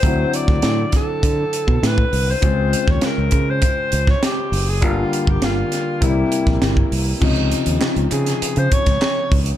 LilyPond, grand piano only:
\new Staff \with { instrumentName = "Grand piano" } { \clef bass \time 4/4 \key des \lydian \tempo 4 = 100 <d fis c' e'>1 | <des aes c' f'>1 | <d g bes f'>2 <c g bes e'>2 | <c des f ees'>1 | }